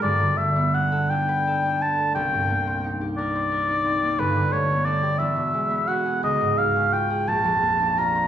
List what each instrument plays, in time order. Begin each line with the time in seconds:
Already playing: harp B3
0.02 harp G1 G2, oboe D5
0.20 harp D3
0.37 harp A3, oboe E5
0.56 harp B3
0.74 harp D4, oboe F#5
0.92 harp A4
1.10 harp D4, oboe G5
1.29 harp B4
1.47 harp A4
1.65 harp D4
1.82 harp B3, oboe A5
1.98 harp A3
2.15 harp C2, oboe G5
2.33 harp G2
2.50 harp A#3
2.67 harp C4
2.84 harp D#4
3.01 harp G4
3.17 harp A#4, oboe D5
3.35 harp C5
3.52 harp A#4
3.69 harp D#4
3.85 harp C4
4.03 harp A#3
4.18 harp G1 G2, oboe B4
4.36 harp D3
4.52 harp A3, oboe C#5
4.70 harp B3
4.86 harp D4, oboe D5
5.03 harp G4
5.18 harp E2, oboe E5
5.36 harp B2
5.54 harp G#3
5.71 harp B3
5.88 harp F#4, oboe F#5
6.06 harp G#4
6.23 harp C#2, oboe D#5
6.41 harp G#2
6.58 harp G#3, oboe F5
6.76 harp C#4
6.93 harp F4, oboe G5
7.10 harp G#4
7.27 harp A#1, oboe A5
7.44 harp F2
7.62 harp A#3
7.79 harp D4
7.98 harp F4, oboe A#5
8.15 harp C5